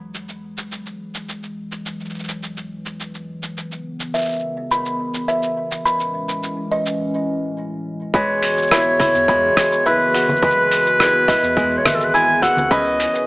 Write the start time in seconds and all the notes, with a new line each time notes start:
Already playing: E2 E3 F#3 G#3
0.14 cabasa
0.29 cabasa
0.57 cabasa
0.72 cabasa
0.86 cabasa
1.15 cabasa
1.29 cabasa
1.43 cabasa
1.72 cabasa
1.86 cabasa
2.00 cabasa
2.05 cabasa
2.10 cabasa
2.14 cabasa
2.19 cabasa
2.24 cabasa
2.28 cabasa
2.43 cabasa
2.57 cabasa
2.86 cabasa
3.00 cabasa
3.15 cabasa
3.43 cabasa
3.57 C#2 C#3 B3, cabasa
3.72 cabasa
4.00 cabasa
4.14 E5, cabasa
4.18 cabasa
4.22 cabasa
4.25 cabasa
4.29 cabasa
4.32 cabasa
4.39 cabasa
4.71 B5, cabasa
4.86 cabasa
5.14 cabasa
5.28 E5, cabasa
5.43 cabasa
5.71 cabasa
5.85 A2 E3 G#3 C#4 B5, cabasa
6.00 cabasa
6.29 cabasa
6.43 cabasa
6.72 D#5
6.86 cabasa
8.14 E1 E3 G#3 B3 F#4 G#4 B4 C#5, kick, cabasa
8.43 open hi-hat, cabasa
8.57 cabasa
8.62 cabasa
8.67 cabasa
8.71 E4 E5, cross-stick, cabasa
8.81 cabasa
9.00 E4, kick, open hi-hat, low conga, cabasa
9.14 E2, cabasa
9.28 G#3 B5, kick, cabasa
9.57 kick, cross-stick, open hi-hat, cabasa
9.72 cabasa
9.86 F#1 E4 B4 E5, cabasa
10.14 F#4, open hi-hat, cabasa
10.29 low conga, cabasa
10.36 cabasa
10.43 G#3 B4 B5, kick, cabasa
10.51 cabasa
10.71 open hi-hat, cabasa
10.86 cabasa
11.00 E4, cross-stick, cabasa
11.28 E4 D#5, kick, open hi-hat, cabasa
11.43 E2, cabasa
11.57 G#3, kick, cabasa
11.78 C#5
11.85 G#1 B4 E5, kick, cross-stick, open hi-hat, low conga, cabasa
11.95 A4
12.00 B4, cabasa
12.14 E4 G#5, cabasa
12.42 F#4 F#5 E6, kick, open hi-hat, cabasa
12.57 C#2, low conga, cabasa
12.71 C#3 C#4 E4 B4 D#5, kick, cabasa
13.00 open hi-hat, cabasa
13.15 cabasa